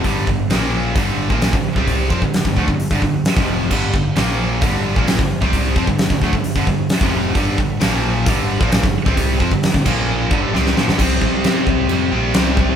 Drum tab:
CC |----------------|----------------|x---------------|----------------|
HH |o---o---o---o---|o---o---o---o---|----o---o---o---|o---o---o---o---|
SD |----o-------o---|----o-------o---|----o-------o---|----o-o-----o---|
BD |o-o-----o--o-o-o|o-oo-ooo-oo--o--|o-o-----o--o-o-o|o-oo-ooo-oo--o--|

CC |----------------|------x---------|x---x---x---x---|
HH |o---o---o---o---|o---o-----------|----------------|
SD |----o-------o---|----o-------oooo|----o-------o---|
BD |o-o-----o--o-o-o|o-oo-oo---o-----|o-o---o-------o-|